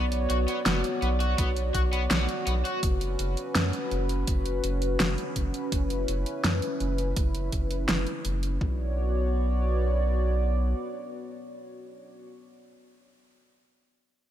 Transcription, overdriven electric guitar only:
0.30 0.35 F#4 medium
0.48 0.57 B3 loud
0.66 0.80 B3 medium
1.02 1.08 B3 medium
1.20 1.34 F#4 medium
1.38 1.47 B3 loud
1.75 1.80 F#4 medium
1.93 2.02 B3 medium
2.11 2.24 B3 loud
2.47 2.52 B3 medium
2.65 2.79 F#4 medium

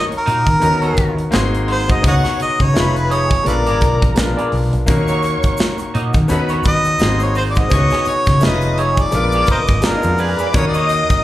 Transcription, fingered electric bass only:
0.28 0.44 A#2 medium
0.47 0.60 D#3 loud
0.63 0.93 D#2 medium
0.98 1.28 D#2 medium
1.34 1.93 G#1 medium
2.04 2.21 C#2 loud
2.40 muted fingered electric bass stroke soft
2.60 2.73 C#3 medium
2.76 3.35 F1 medium
3.47 3.67 A#1 medium
3.67 3.79 G#1 medium
3.82 3.99 B1 medium
4.03 4.15 A#1 medium
4.17 4.34 A#1 medium
4.53 4.70 B1 medium
4.73 4.86 B1 medium
4.89 5.35 D#2 loud
5.44 muted fingered electric bass stroke soft
5.95 6.12 A#2 medium
6.15 6.27 D#3 medium
6.30 6.60 D#2 medium
6.66 6.95 D#2 medium
7.01 7.60 G#1 medium
7.72 7.89 C#2 loud
8.07 muted fingered electric bass stroke soft
8.27 8.44 C#3 loud
8.42 9.01 F1 loud
9.13 9.43 A#1 medium
9.48 muted fingered electric bass stroke soft
9.69 9.81 G#1 medium
9.84 muted fingered electric bass stroke soft
10.05 10.34 F2 medium
10.55 11.01 D#2 loud
11.10 muted fingered electric bass stroke soft

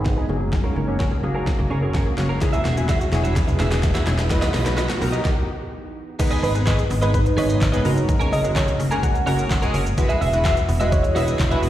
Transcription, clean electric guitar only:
0.05 muted clean electric guitar stroke soft
0.17 0.28 D#4 medium
0.17 0.28 G#4 medium
0.17 0.30 B4 medium
0.40 muted clean electric guitar stroke medium
0.52 muted clean electric guitar stroke soft
0.64 0.74 C#4 medium
0.64 0.75 G#4 medium
0.64 0.76 A#4 medium
0.76 0.90 C#4 medium
0.76 0.88 G#4 medium
0.76 0.86 A#4 medium
0.88 muted clean electric guitar stroke medium
0.99 1.17 C#4 medium
0.99 1.11 G#4 medium
0.99 1.10 A#4 medium
1.11 muted clean electric guitar stroke soft
1.23 muted clean electric guitar stroke soft
1.35 1.45 C#4 soft
1.35 1.46 G#4 medium
1.35 1.47 A#4 medium
1.47 muted clean electric guitar stroke soft
1.59 muted clean electric guitar stroke medium
1.70 1.83 C#4 medium
1.70 1.82 G#4 medium
1.70 1.81 A#4 medium
1.82 1.93 C#4 medium
1.82 1.94 G#4 soft
1.82 1.94 A#4 medium
1.94 2.12 C#4 medium
1.94 2.06 G#4 medium
1.94 2.05 A#4 loud
2.06 muted clean electric guitar stroke soft
2.18 muted clean electric guitar stroke soft
2.29 2.44 C#4 medium
2.29 2.41 G#4 medium
2.29 2.42 A#4 medium
2.41 muted clean electric guitar stroke soft
2.53 2.64 F#4 medium
2.53 2.65 G#4 medium
2.53 2.65 E5 medium
2.65 2.79 F#4 medium
2.65 2.77 G#4 medium
2.65 2.76 E5 medium
2.88 3.06 F#4 medium
2.88 3.00 G#4 medium
2.88 2.99 E5 medium
3.00 muted clean electric guitar stroke medium
3.12 muted clean electric guitar stroke soft
3.24 3.34 F#4 medium
3.24 3.35 G#4 medium
3.24 3.36 E5 medium
3.48 muted clean electric guitar stroke medium
3.59 3.71 F#4 medium
3.59 3.71 G#4 loud
3.59 3.70 E5 loud
3.71 3.82 F#4 medium
3.71 3.82 G#4 medium
3.71 3.83 E5 medium
3.83 muted clean electric guitar stroke soft
3.95 4.05 F#4 medium
3.95 4.06 G#4 medium
3.95 4.07 E5 medium
4.18 muted clean electric guitar stroke soft
4.30 muted clean electric guitar stroke medium
4.42 4.52 F#4 medium
4.42 4.53 B4 medium
4.42 4.54 D#5 loud
4.53 4.67 F#4 medium
4.53 4.65 B4 medium
4.53 4.64 D#5 medium
4.65 muted clean electric guitar stroke soft
4.77 4.95 F#4 medium
4.77 4.89 B4 loud
4.77 4.88 D#5 loud
4.89 muted clean electric guitar stroke medium
5.01 muted clean electric guitar stroke soft
5.12 5.27 F#4 medium
5.12 5.27 B4 medium
5.12 5.27 D#5 medium
6.19 muted clean electric guitar stroke soft
6.31 6.41 G#4 medium
6.31 6.42 B4 medium
6.31 6.43 D#5 medium
6.43 6.57 G#4 medium
6.43 6.55 B4 medium
6.43 6.54 D#5 medium
6.55 muted clean electric guitar stroke soft
6.66 6.84 G#4 medium
6.66 6.78 B4 loud
6.66 6.77 D#5 medium
6.78 muted clean electric guitar stroke soft
6.90 muted clean electric guitar stroke soft
7.01 7.12 G#4 medium
7.01 7.13 B4 medium
7.01 7.13 D#5 medium
7.13 muted clean electric guitar stroke soft
7.25 muted clean electric guitar stroke soft
7.37 7.49 G#4 medium
7.37 7.48 B4 loud
7.37 7.47 D#5 loud
7.49 7.59 G#4 medium
7.49 7.60 B4 medium
7.49 7.60 D#5 medium
7.60 muted clean electric guitar stroke soft
7.72 7.84 G#4 medium
7.72 7.85 B4 medium
7.72 7.90 D#5 loud
7.84 muted clean electric guitar stroke soft
7.96 muted clean electric guitar stroke medium
8.08 muted clean electric guitar stroke soft
8.20 8.30 C#4 medium
8.20 8.31 G#4 medium
8.20 8.32 A#4 loud
8.31 8.45 C#4 medium
8.31 8.44 G#4 medium
8.31 8.42 A#4 medium
8.44 muted clean electric guitar stroke medium
8.55 8.73 C#4 medium
8.55 8.67 G#4 medium
8.55 8.66 A#4 loud
8.67 muted clean electric guitar stroke medium
8.79 muted clean electric guitar stroke medium
8.91 9.02 C#4 medium
8.91 9.02 G#4 medium
8.91 9.03 A#4 medium
9.03 muted clean electric guitar stroke medium
9.15 muted clean electric guitar stroke soft
9.26 9.39 C#4 loud
9.26 9.38 G#4 loud
9.26 9.37 A#4 loud
9.38 9.49 C#4 medium
9.38 9.50 G#4 medium
9.38 9.50 A#4 medium
9.50 muted clean electric guitar stroke soft
9.62 9.73 C#4 medium
9.62 9.74 G#4 medium
9.62 9.74 A#4 medium
9.74 9.88 C#4 medium
9.74 9.86 G#4 medium
9.74 9.85 A#4 medium
9.86 muted clean electric guitar stroke medium
9.97 muted clean electric guitar stroke soft
10.09 10.20 F#4 medium
10.09 10.21 G#4 medium
10.09 10.22 E5 medium
10.21 10.35 F#4 medium
10.21 10.33 G#4 medium
10.21 10.32 E5 medium
10.33 muted clean electric guitar stroke soft
10.44 10.62 F#4 medium
10.44 10.56 G#4 medium
10.44 10.55 E5 loud
10.56 muted clean electric guitar stroke soft
10.68 muted clean electric guitar stroke soft
10.80 10.90 F#4 medium
10.80 10.91 G#4 medium
10.80 10.92 E5 medium
10.92 muted clean electric guitar stroke soft
11.03 muted clean electric guitar stroke medium
11.15 11.27 F#4 medium
11.15 11.27 G#4 medium
11.15 11.26 E5 loud
11.27 11.38 F#4 medium
11.27 11.39 G#4 medium
11.27 11.39 E5 medium
11.39 muted clean electric guitar stroke soft
11.51 11.61 F#4 medium
11.51 11.62 G#4 medium
11.51 11.63 E5 medium
11.62 muted clean electric guitar stroke medium

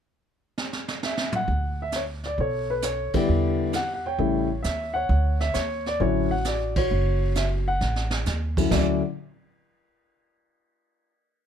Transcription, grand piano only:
1.04 1.35 E5 medium
1.36 1.81 F#5 medium
1.82 1.95 E5 medium
1.96 2.02 C#5 medium
2.26 2.40 D5 medium
2.40 3.26 A4 soft
2.40 2.71 C#5 medium
2.70 2.83 B4 medium
2.84 3.13 C#5 medium
3.14 3.71 D3 medium
3.14 3.71 G3 soft
3.14 3.71 B3 medium
3.14 3.72 E4 medium
3.14 4.02 G4 medium
3.14 3.77 D5 medium
3.75 3.92 F#5 medium
3.94 4.04 F#5 medium
4.06 4.92 C#5 medium
4.06 4.48 G5 medium
4.19 4.47 C#3 medium
4.19 4.47 G3 medium
4.19 4.47 A3 medium
4.19 4.47 E4 medium
4.63 4.92 E5 medium
4.94 5.53 C#5 medium
4.94 5.37 F#5 medium
5.41 5.55 E5 medium
5.54 5.86 C#5 medium
5.87 6.01 D5 medium
6.00 6.28 D3 medium
6.00 6.28 F#3 medium
6.00 6.28 C#4 soft
6.00 6.28 E4 medium
6.00 6.77 F#4 soft
6.00 6.33 C#5 medium
6.31 6.44 F#5 medium
6.46 6.78 D5 medium
6.77 7.64 F#4 soft
6.77 7.38 C#5 medium
7.36 7.43 E5 medium
7.68 8.10 F#5 medium
8.57 8.69 D3 medium
8.57 8.69 F#3 soft
8.57 8.70 C#4 soft
8.57 8.70 E4 medium
8.71 8.99 D3 medium
8.71 9.00 F#3 medium
8.71 9.00 C#4 soft
8.71 9.00 E4 medium
8.71 9.01 D5 medium

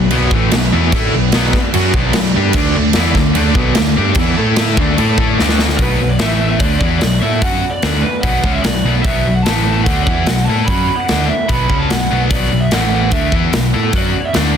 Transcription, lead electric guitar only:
5.78 6.10 B4 medium
6.09 6.19 D5 medium
6.19 6.48 E5 medium
6.49 6.60 E5 medium
6.60 6.78 D5 medium
6.79 6.85 D5 medium
6.99 7.20 D5 medium
7.20 7.42 E5 medium
7.42 7.71 F#5 medium
7.70 8.00 D5 medium
8.02 8.24 B4 medium
8.21 8.54 F#5 medium
8.53 8.63 E5 medium
8.63 8.92 D5 medium
9.03 9.33 E5 medium
9.35 9.42 F#5 medium
9.42 9.72 A5 medium
9.73 9.83 A5 loud
9.84 10.02 F#5 medium
10.03 10.47 F#5 loud
10.45 10.65 A5 loud
10.65 10.98 B5 loud
10.96 11.27 F#5 medium
11.27 11.50 E5 medium
11.48 11.79 B5 medium
11.79 11.90 A5 medium
11.89 12.18 F#5 medium
12.32 12.63 D5 medium
12.60 12.71 E5 medium
12.72 13.01 F#5 medium
13.02 13.12 F#5 medium
13.12 13.32 E5 medium
13.98 14.28 D5 medium
14.25 14.36 E5 medium
14.36 14.57 F#5 loud

